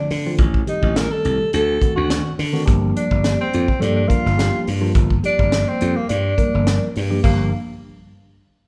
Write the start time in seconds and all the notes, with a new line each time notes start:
Already playing: D3 F3 A3 C4 D4
0.10 D3, snare, open hi-hat
0.26 D3 F3 A3 C4 F4
0.38 A1, kick, closed hi-hat
0.54 kick
0.67 D#3 G3 A3 C4 D#4 G4, closed hi-hat
0.83 A1, kick
0.96 A#4, snare, closed hi-hat
1.11 A4
1.25 C2, closed hi-hat
1.53 D2 A4, closed hi-hat
1.81 D#3 A3 C4 D4 F#4, kick, closed hi-hat
1.96 D2 F#4
2.10 snare, closed hi-hat
2.39 D3, snare, open hi-hat
2.52 D#3 A3 C4 D4 F#4, snare
2.65 G1 F3 G3 A#3 D4 G4, kick, closed hi-hat
2.96 D4, closed hi-hat
3.11 G1, kick
3.24 snare, closed hi-hat
3.41 C4
3.53 F2, closed hi-hat
3.68 kick
3.80 G2 F3 G3 A#3 D4 A4, closed hi-hat
3.96 D4
4.07 F3 G3 A#3 D4 F4 A#4, kick, closed hi-hat
4.26 G1, snare
4.36 F3 G3 A#3 D4 G4, snare, closed hi-hat
4.67 G2, open hi-hat
4.81 F3 G3 A#3 D4 F4
4.95 G1, kick, closed hi-hat
5.10 kick
5.23 F3 G3 A#3 D4 G4, closed hi-hat
5.39 G1, kick
5.52 snare, closed hi-hat
5.68 C4
5.80 F2, closed hi-hat
5.96 A#3
6.09 G2 D4, closed hi-hat
6.37 F3 G3 A#3 D4 A#4, kick, closed hi-hat
6.55 G1
6.67 snare, closed hi-hat
6.95 G2, open hi-hat
7.10 F3 G3 A#3 D4 G4
7.23 G1 F3 G3 A#3 D4 G4, kick, crash